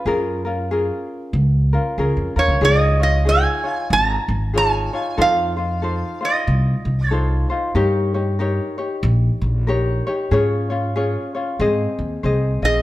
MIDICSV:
0, 0, Header, 1, 4, 480
1, 0, Start_track
1, 0, Key_signature, -5, "major"
1, 0, Tempo, 641711
1, 40, Time_signature, 4, 2, 24, 8
1, 9589, End_track
2, 0, Start_track
2, 0, Title_t, "Resonator guitar played with a steel bar"
2, 0, Program_c, 0, 25
2, 1787, Note_on_c, 0, 73, 75
2, 1974, Note_off_c, 0, 73, 0
2, 1980, Note_on_c, 0, 75, 88
2, 2259, Note_off_c, 0, 75, 0
2, 2268, Note_on_c, 0, 75, 75
2, 2454, Note_off_c, 0, 75, 0
2, 2459, Note_on_c, 0, 80, 88
2, 2899, Note_off_c, 0, 80, 0
2, 2939, Note_on_c, 0, 82, 101
2, 3420, Note_off_c, 0, 82, 0
2, 3423, Note_on_c, 0, 80, 96
2, 3901, Note_on_c, 0, 77, 94
2, 3904, Note_off_c, 0, 80, 0
2, 4629, Note_off_c, 0, 77, 0
2, 4674, Note_on_c, 0, 75, 71
2, 5295, Note_off_c, 0, 75, 0
2, 5295, Note_on_c, 0, 73, 71
2, 5590, Note_off_c, 0, 73, 0
2, 9462, Note_on_c, 0, 75, 88
2, 9589, Note_off_c, 0, 75, 0
2, 9589, End_track
3, 0, Start_track
3, 0, Title_t, "Ukulele"
3, 0, Program_c, 1, 24
3, 44, Note_on_c, 1, 68, 81
3, 49, Note_on_c, 1, 61, 77
3, 52, Note_on_c, 1, 65, 86
3, 57, Note_on_c, 1, 70, 90
3, 327, Note_off_c, 1, 70, 0
3, 332, Note_off_c, 1, 68, 0
3, 335, Note_off_c, 1, 61, 0
3, 336, Note_off_c, 1, 65, 0
3, 336, Note_on_c, 1, 70, 52
3, 345, Note_on_c, 1, 65, 47
3, 354, Note_on_c, 1, 61, 43
3, 523, Note_off_c, 1, 70, 0
3, 524, Note_off_c, 1, 61, 0
3, 528, Note_off_c, 1, 65, 0
3, 531, Note_on_c, 1, 68, 62
3, 533, Note_on_c, 1, 61, 58
3, 541, Note_on_c, 1, 65, 62
3, 543, Note_on_c, 1, 70, 64
3, 1284, Note_off_c, 1, 70, 0
3, 1293, Note_on_c, 1, 70, 52
3, 1300, Note_off_c, 1, 65, 0
3, 1303, Note_off_c, 1, 61, 0
3, 1303, Note_on_c, 1, 65, 51
3, 1306, Note_on_c, 1, 61, 43
3, 1316, Note_off_c, 1, 68, 0
3, 1477, Note_off_c, 1, 61, 0
3, 1479, Note_off_c, 1, 65, 0
3, 1481, Note_on_c, 1, 68, 60
3, 1482, Note_off_c, 1, 70, 0
3, 1486, Note_on_c, 1, 61, 69
3, 1488, Note_on_c, 1, 65, 60
3, 1494, Note_on_c, 1, 70, 62
3, 1757, Note_off_c, 1, 70, 0
3, 1766, Note_off_c, 1, 65, 0
3, 1766, Note_on_c, 1, 70, 50
3, 1771, Note_off_c, 1, 68, 0
3, 1773, Note_off_c, 1, 61, 0
3, 1775, Note_on_c, 1, 65, 48
3, 1781, Note_on_c, 1, 61, 42
3, 1954, Note_off_c, 1, 65, 0
3, 1956, Note_off_c, 1, 61, 0
3, 1956, Note_on_c, 1, 68, 69
3, 1958, Note_off_c, 1, 70, 0
3, 1959, Note_on_c, 1, 63, 66
3, 1963, Note_on_c, 1, 65, 76
3, 1966, Note_on_c, 1, 73, 77
3, 2231, Note_off_c, 1, 73, 0
3, 2240, Note_off_c, 1, 65, 0
3, 2240, Note_on_c, 1, 73, 48
3, 2245, Note_off_c, 1, 63, 0
3, 2248, Note_off_c, 1, 68, 0
3, 2249, Note_on_c, 1, 65, 46
3, 2254, Note_on_c, 1, 63, 40
3, 2430, Note_off_c, 1, 63, 0
3, 2431, Note_on_c, 1, 68, 52
3, 2435, Note_off_c, 1, 65, 0
3, 2435, Note_off_c, 1, 73, 0
3, 2439, Note_on_c, 1, 63, 58
3, 2444, Note_on_c, 1, 65, 65
3, 2447, Note_on_c, 1, 73, 64
3, 2711, Note_off_c, 1, 73, 0
3, 2720, Note_on_c, 1, 73, 44
3, 2722, Note_off_c, 1, 65, 0
3, 2725, Note_off_c, 1, 68, 0
3, 2727, Note_off_c, 1, 63, 0
3, 2731, Note_on_c, 1, 65, 41
3, 2736, Note_on_c, 1, 63, 37
3, 3392, Note_on_c, 1, 68, 54
3, 3394, Note_off_c, 1, 73, 0
3, 3395, Note_off_c, 1, 63, 0
3, 3397, Note_off_c, 1, 65, 0
3, 3398, Note_on_c, 1, 63, 62
3, 3400, Note_on_c, 1, 65, 64
3, 3409, Note_on_c, 1, 73, 63
3, 3681, Note_off_c, 1, 73, 0
3, 3685, Note_off_c, 1, 68, 0
3, 3688, Note_off_c, 1, 63, 0
3, 3689, Note_off_c, 1, 65, 0
3, 3690, Note_on_c, 1, 73, 55
3, 3698, Note_on_c, 1, 65, 46
3, 3700, Note_on_c, 1, 63, 40
3, 3863, Note_off_c, 1, 63, 0
3, 3869, Note_off_c, 1, 65, 0
3, 3870, Note_on_c, 1, 69, 80
3, 3872, Note_on_c, 1, 63, 77
3, 3876, Note_off_c, 1, 73, 0
3, 3878, Note_on_c, 1, 65, 86
3, 3879, Note_on_c, 1, 72, 81
3, 4155, Note_off_c, 1, 72, 0
3, 4163, Note_off_c, 1, 65, 0
3, 4164, Note_off_c, 1, 69, 0
3, 4164, Note_on_c, 1, 72, 49
3, 4165, Note_off_c, 1, 63, 0
3, 4172, Note_on_c, 1, 65, 44
3, 4178, Note_on_c, 1, 63, 42
3, 4352, Note_off_c, 1, 63, 0
3, 4353, Note_on_c, 1, 69, 57
3, 4354, Note_off_c, 1, 65, 0
3, 4355, Note_off_c, 1, 72, 0
3, 4361, Note_on_c, 1, 63, 58
3, 4363, Note_on_c, 1, 65, 62
3, 4368, Note_on_c, 1, 72, 59
3, 4633, Note_off_c, 1, 72, 0
3, 4642, Note_on_c, 1, 72, 46
3, 4643, Note_off_c, 1, 65, 0
3, 4645, Note_off_c, 1, 69, 0
3, 4647, Note_off_c, 1, 63, 0
3, 4652, Note_on_c, 1, 65, 42
3, 4656, Note_on_c, 1, 63, 42
3, 5314, Note_off_c, 1, 72, 0
3, 5316, Note_off_c, 1, 63, 0
3, 5317, Note_on_c, 1, 69, 66
3, 5319, Note_off_c, 1, 65, 0
3, 5319, Note_on_c, 1, 63, 63
3, 5327, Note_on_c, 1, 65, 65
3, 5335, Note_on_c, 1, 72, 67
3, 5599, Note_off_c, 1, 72, 0
3, 5607, Note_off_c, 1, 65, 0
3, 5607, Note_off_c, 1, 69, 0
3, 5608, Note_off_c, 1, 63, 0
3, 5608, Note_on_c, 1, 72, 61
3, 5616, Note_on_c, 1, 65, 50
3, 5626, Note_on_c, 1, 63, 45
3, 5790, Note_off_c, 1, 63, 0
3, 5795, Note_on_c, 1, 70, 78
3, 5796, Note_off_c, 1, 72, 0
3, 5799, Note_on_c, 1, 63, 91
3, 5800, Note_off_c, 1, 65, 0
3, 5803, Note_on_c, 1, 67, 92
3, 5806, Note_on_c, 1, 73, 93
3, 6082, Note_off_c, 1, 73, 0
3, 6085, Note_off_c, 1, 67, 0
3, 6086, Note_off_c, 1, 70, 0
3, 6088, Note_off_c, 1, 63, 0
3, 6091, Note_on_c, 1, 73, 54
3, 6094, Note_on_c, 1, 67, 54
3, 6101, Note_on_c, 1, 63, 48
3, 6274, Note_off_c, 1, 63, 0
3, 6275, Note_on_c, 1, 70, 59
3, 6278, Note_off_c, 1, 73, 0
3, 6280, Note_off_c, 1, 67, 0
3, 6283, Note_on_c, 1, 63, 72
3, 6289, Note_on_c, 1, 67, 67
3, 6294, Note_on_c, 1, 73, 69
3, 6557, Note_off_c, 1, 73, 0
3, 6563, Note_off_c, 1, 67, 0
3, 6565, Note_off_c, 1, 70, 0
3, 6566, Note_on_c, 1, 73, 54
3, 6569, Note_off_c, 1, 63, 0
3, 6572, Note_on_c, 1, 67, 52
3, 6581, Note_on_c, 1, 63, 43
3, 7234, Note_off_c, 1, 63, 0
3, 7234, Note_on_c, 1, 70, 64
3, 7235, Note_off_c, 1, 67, 0
3, 7235, Note_off_c, 1, 73, 0
3, 7243, Note_on_c, 1, 63, 61
3, 7244, Note_on_c, 1, 67, 74
3, 7250, Note_on_c, 1, 73, 76
3, 7521, Note_off_c, 1, 73, 0
3, 7525, Note_off_c, 1, 70, 0
3, 7529, Note_off_c, 1, 63, 0
3, 7530, Note_off_c, 1, 67, 0
3, 7530, Note_on_c, 1, 73, 65
3, 7537, Note_on_c, 1, 67, 52
3, 7545, Note_on_c, 1, 63, 48
3, 7714, Note_off_c, 1, 63, 0
3, 7715, Note_on_c, 1, 68, 86
3, 7717, Note_off_c, 1, 73, 0
3, 7717, Note_on_c, 1, 61, 81
3, 7721, Note_off_c, 1, 67, 0
3, 7725, Note_on_c, 1, 65, 86
3, 7729, Note_on_c, 1, 73, 89
3, 7994, Note_off_c, 1, 73, 0
3, 8002, Note_off_c, 1, 65, 0
3, 8003, Note_on_c, 1, 73, 55
3, 8005, Note_off_c, 1, 68, 0
3, 8006, Note_off_c, 1, 61, 0
3, 8011, Note_on_c, 1, 65, 50
3, 8017, Note_on_c, 1, 61, 46
3, 8189, Note_off_c, 1, 61, 0
3, 8194, Note_off_c, 1, 65, 0
3, 8194, Note_off_c, 1, 73, 0
3, 8196, Note_on_c, 1, 68, 65
3, 8198, Note_on_c, 1, 61, 67
3, 8202, Note_on_c, 1, 65, 63
3, 8205, Note_on_c, 1, 73, 63
3, 8478, Note_off_c, 1, 73, 0
3, 8486, Note_off_c, 1, 68, 0
3, 8487, Note_off_c, 1, 61, 0
3, 8487, Note_off_c, 1, 65, 0
3, 8487, Note_on_c, 1, 73, 54
3, 8496, Note_on_c, 1, 65, 46
3, 8501, Note_on_c, 1, 61, 46
3, 8676, Note_off_c, 1, 73, 0
3, 8677, Note_off_c, 1, 61, 0
3, 8677, Note_on_c, 1, 72, 72
3, 8680, Note_off_c, 1, 65, 0
3, 8680, Note_on_c, 1, 60, 79
3, 8685, Note_on_c, 1, 68, 85
3, 8686, Note_on_c, 1, 75, 93
3, 9140, Note_off_c, 1, 72, 0
3, 9147, Note_off_c, 1, 60, 0
3, 9149, Note_on_c, 1, 72, 62
3, 9151, Note_off_c, 1, 68, 0
3, 9156, Note_on_c, 1, 60, 69
3, 9158, Note_off_c, 1, 75, 0
3, 9160, Note_on_c, 1, 68, 65
3, 9167, Note_on_c, 1, 75, 74
3, 9436, Note_off_c, 1, 75, 0
3, 9443, Note_off_c, 1, 72, 0
3, 9445, Note_on_c, 1, 75, 53
3, 9446, Note_off_c, 1, 60, 0
3, 9446, Note_off_c, 1, 68, 0
3, 9455, Note_on_c, 1, 68, 43
3, 9462, Note_on_c, 1, 60, 39
3, 9589, Note_off_c, 1, 60, 0
3, 9589, Note_off_c, 1, 68, 0
3, 9589, Note_off_c, 1, 75, 0
3, 9589, End_track
4, 0, Start_track
4, 0, Title_t, "Upright bass"
4, 0, Program_c, 2, 32
4, 41, Note_on_c, 2, 42, 78
4, 665, Note_off_c, 2, 42, 0
4, 996, Note_on_c, 2, 37, 98
4, 1310, Note_off_c, 2, 37, 0
4, 1479, Note_on_c, 2, 37, 80
4, 1574, Note_off_c, 2, 37, 0
4, 1621, Note_on_c, 2, 41, 73
4, 1754, Note_off_c, 2, 41, 0
4, 1765, Note_on_c, 2, 39, 70
4, 1851, Note_off_c, 2, 39, 0
4, 1855, Note_on_c, 2, 37, 75
4, 1945, Note_off_c, 2, 37, 0
4, 1952, Note_on_c, 2, 37, 86
4, 2578, Note_off_c, 2, 37, 0
4, 2919, Note_on_c, 2, 32, 98
4, 3107, Note_off_c, 2, 32, 0
4, 3204, Note_on_c, 2, 32, 90
4, 3640, Note_off_c, 2, 32, 0
4, 3875, Note_on_c, 2, 41, 83
4, 4499, Note_off_c, 2, 41, 0
4, 4842, Note_on_c, 2, 36, 100
4, 5029, Note_off_c, 2, 36, 0
4, 5124, Note_on_c, 2, 36, 86
4, 5560, Note_off_c, 2, 36, 0
4, 5795, Note_on_c, 2, 43, 83
4, 6419, Note_off_c, 2, 43, 0
4, 6753, Note_on_c, 2, 34, 108
4, 6942, Note_off_c, 2, 34, 0
4, 7042, Note_on_c, 2, 34, 89
4, 7478, Note_off_c, 2, 34, 0
4, 7713, Note_on_c, 2, 44, 85
4, 8338, Note_off_c, 2, 44, 0
4, 8673, Note_on_c, 2, 44, 96
4, 8862, Note_off_c, 2, 44, 0
4, 8965, Note_on_c, 2, 39, 80
4, 9089, Note_off_c, 2, 39, 0
4, 9152, Note_on_c, 2, 36, 77
4, 9415, Note_off_c, 2, 36, 0
4, 9442, Note_on_c, 2, 34, 76
4, 9589, Note_off_c, 2, 34, 0
4, 9589, End_track
0, 0, End_of_file